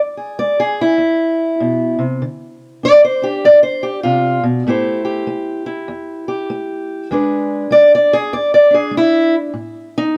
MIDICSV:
0, 0, Header, 1, 2, 480
1, 0, Start_track
1, 0, Tempo, 610998
1, 1742, Time_signature, 4, 2, 24, 8
1, 7990, End_track
2, 0, Start_track
2, 0, Title_t, "Steel-string acoustic guitar"
2, 0, Program_c, 0, 25
2, 0, Note_on_c, 0, 40, 71
2, 136, Note_on_c, 0, 68, 47
2, 264, Note_off_c, 0, 40, 0
2, 304, Note_on_c, 0, 56, 73
2, 306, Note_on_c, 0, 74, 108
2, 459, Note_off_c, 0, 68, 0
2, 464, Note_off_c, 0, 74, 0
2, 469, Note_on_c, 0, 68, 103
2, 626, Note_off_c, 0, 68, 0
2, 639, Note_on_c, 0, 64, 101
2, 748, Note_off_c, 0, 56, 0
2, 769, Note_on_c, 0, 40, 65
2, 1220, Note_off_c, 0, 40, 0
2, 1260, Note_on_c, 0, 47, 67
2, 1557, Note_off_c, 0, 47, 0
2, 1560, Note_on_c, 0, 48, 65
2, 1590, Note_off_c, 0, 64, 0
2, 1739, Note_off_c, 0, 48, 0
2, 1743, Note_on_c, 0, 50, 72
2, 2187, Note_off_c, 0, 50, 0
2, 2225, Note_on_c, 0, 62, 68
2, 2238, Note_on_c, 0, 74, 123
2, 2389, Note_off_c, 0, 74, 0
2, 2392, Note_on_c, 0, 72, 97
2, 2520, Note_off_c, 0, 62, 0
2, 2529, Note_on_c, 0, 62, 51
2, 2541, Note_on_c, 0, 67, 99
2, 2547, Note_off_c, 0, 72, 0
2, 2701, Note_off_c, 0, 67, 0
2, 2706, Note_on_c, 0, 45, 71
2, 2711, Note_on_c, 0, 74, 122
2, 2848, Note_off_c, 0, 74, 0
2, 2851, Note_on_c, 0, 72, 100
2, 3008, Note_on_c, 0, 67, 89
2, 3016, Note_off_c, 0, 72, 0
2, 3148, Note_off_c, 0, 45, 0
2, 3165, Note_off_c, 0, 67, 0
2, 3168, Note_on_c, 0, 65, 109
2, 3180, Note_on_c, 0, 48, 69
2, 3479, Note_off_c, 0, 65, 0
2, 3481, Note_off_c, 0, 48, 0
2, 3484, Note_on_c, 0, 47, 71
2, 3641, Note_off_c, 0, 62, 0
2, 3660, Note_off_c, 0, 47, 0
2, 3666, Note_on_c, 0, 45, 80
2, 3672, Note_on_c, 0, 57, 68
2, 3678, Note_on_c, 0, 64, 66
2, 3684, Note_on_c, 0, 67, 62
2, 3688, Note_on_c, 0, 72, 71
2, 3955, Note_off_c, 0, 67, 0
2, 3965, Note_on_c, 0, 67, 65
2, 4108, Note_off_c, 0, 45, 0
2, 4130, Note_off_c, 0, 57, 0
2, 4140, Note_on_c, 0, 57, 68
2, 4444, Note_off_c, 0, 64, 0
2, 4448, Note_on_c, 0, 64, 65
2, 4585, Note_off_c, 0, 57, 0
2, 4619, Note_on_c, 0, 40, 75
2, 4924, Note_off_c, 0, 67, 0
2, 4934, Note_on_c, 0, 67, 68
2, 5064, Note_off_c, 0, 40, 0
2, 5105, Note_on_c, 0, 57, 71
2, 5547, Note_off_c, 0, 57, 0
2, 5563, Note_off_c, 0, 67, 0
2, 5572, Note_off_c, 0, 72, 0
2, 5583, Note_on_c, 0, 40, 83
2, 5589, Note_on_c, 0, 56, 58
2, 5591, Note_off_c, 0, 64, 0
2, 5594, Note_on_c, 0, 62, 53
2, 5598, Note_on_c, 0, 68, 54
2, 5606, Note_on_c, 0, 71, 52
2, 6026, Note_off_c, 0, 40, 0
2, 6044, Note_off_c, 0, 56, 0
2, 6053, Note_on_c, 0, 56, 78
2, 6062, Note_off_c, 0, 71, 0
2, 6065, Note_on_c, 0, 74, 120
2, 6222, Note_off_c, 0, 74, 0
2, 6244, Note_on_c, 0, 74, 116
2, 6380, Note_off_c, 0, 68, 0
2, 6389, Note_on_c, 0, 68, 110
2, 6391, Note_off_c, 0, 74, 0
2, 6501, Note_off_c, 0, 56, 0
2, 6542, Note_on_c, 0, 40, 70
2, 6544, Note_off_c, 0, 68, 0
2, 6546, Note_on_c, 0, 74, 110
2, 6699, Note_off_c, 0, 74, 0
2, 6709, Note_on_c, 0, 74, 102
2, 6830, Note_off_c, 0, 62, 0
2, 6839, Note_on_c, 0, 62, 52
2, 6864, Note_off_c, 0, 74, 0
2, 6869, Note_on_c, 0, 68, 109
2, 6986, Note_off_c, 0, 40, 0
2, 7001, Note_on_c, 0, 56, 72
2, 7024, Note_off_c, 0, 68, 0
2, 7049, Note_on_c, 0, 64, 127
2, 7339, Note_off_c, 0, 64, 0
2, 7455, Note_off_c, 0, 56, 0
2, 7476, Note_off_c, 0, 62, 0
2, 7492, Note_on_c, 0, 45, 66
2, 7837, Note_on_c, 0, 63, 94
2, 7941, Note_off_c, 0, 45, 0
2, 7990, Note_off_c, 0, 63, 0
2, 7990, End_track
0, 0, End_of_file